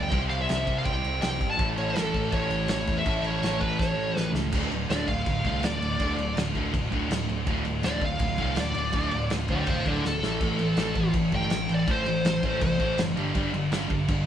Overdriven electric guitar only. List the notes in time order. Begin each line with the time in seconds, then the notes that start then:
Already playing: D3 B3 D4 G4
0.10 C3 G3 C4 E4 G4 C5
1.58 A2 E3 A3 C#4 E4 A4
3.04 A2 E3 A3 C#4 E4 A4
4.52 D2 A2 D3
4.72 D2 A2
4.90 D2 A2 D3
5.08 D2 A2
5.26 D2 A2
5.45 D2 A2 D3
5.64 D2 A2
5.81 D2 A2
5.99 D2 A2 D3
6.17 D2 A2
6.35 D2 A2
6.52 D2 A2 D3
6.72 D2 A2
6.91 D2 A2 D3
7.09 D2 A2
7.27 D2 A2
7.45 D2 A2 D3
7.64 D2 A2
7.83 D2 A2 D3
8.02 D2 A2
8.19 D2 A2
8.38 D2 A2 D3
8.56 D2 A2
8.74 D2 A2
8.92 D2 A2 D3
9.11 D2 A2
9.31 D2 A2
9.49 D2 A2 D3
9.68 D2 A2
9.87 D2 A2 D3
10.06 D2 A2
10.24 A2 E3 A3
10.41 A2 E3 A3
10.59 A2 E3
10.77 A2 E3 A3
10.95 A2 E3
11.13 A2 E3
11.32 A2 E3 A3
11.51 A2 E3
11.69 A2 E3
11.87 A2 E3 A3
12.06 A2 E3
12.25 A2 E3
12.43 A2 E3 A3
12.61 A2 E3
12.79 A2 E3 A3
12.98 A2 E3
13.16 G2 D3 G3
13.35 G2 D3 G3
13.53 G2 D3
13.72 G2 D3 G3
13.89 G2 D3
14.09 G2 D3